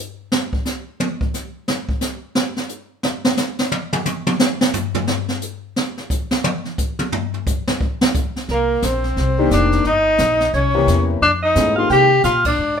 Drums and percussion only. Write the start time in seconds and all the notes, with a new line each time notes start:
0.32 snare
0.53 kick
0.65 snare, hi-hat pedal
1.00 high tom
1.21 kick
1.34 snare, hi-hat pedal
1.68 snare
1.89 kick
2.01 snare, hi-hat pedal
2.35 snare
2.57 snare
2.69 hi-hat pedal
3.03 snare
3.25 snare
3.37 snare, hi-hat pedal
3.59 snare
3.72 high tom
3.93 high tom
4.05 hi-hat pedal, high tom
4.27 high tom
4.40 snare
4.61 snare
4.73 floor tom, hi-hat pedal
4.95 floor tom
5.07 snare
5.28 snare
5.42 hi-hat pedal
5.76 snare
5.98 snare
6.10 kick, hi-hat pedal
6.31 snare
6.44 high tom
6.65 snare
6.78 kick, hi-hat pedal
6.99 high tom
7.12 floor tom
7.34 floor tom
7.46 kick, hi-hat pedal
7.67 snare
7.81 kick
8.01 snare
8.14 kick, hi-hat pedal
8.36 snare
8.48 brush sweep, kick, snare
8.82 kick, snare, hi-hat pedal
9.04 snare
9.17 brush sweep, kick, snare
9.51 snare, hi-hat pedal
9.72 snare
9.84 brush sweep, kick, snare
10.18 kick, snare, hi-hat pedal
10.40 snare
10.53 brush sweep, kick, snare
10.88 snare, hi-hat pedal
11.21 brush sweep, kick, snare
11.55 kick, snare, hi-hat pedal
11.89 brush sweep, kick, snare
12.23 kick, snare, hi-hat pedal
12.45 kick, ride
12.58 brush sweep